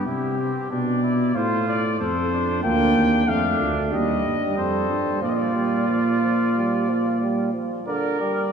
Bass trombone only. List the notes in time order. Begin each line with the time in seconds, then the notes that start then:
0.07 C3
0.71 B2
1.35 A2
2.01 F2
2.64 D2
2.96 D#2
3.28 F2
3.60 D2
3.93 D#2
4.24 G2
4.57 F2
4.89 G2
5.22 A#2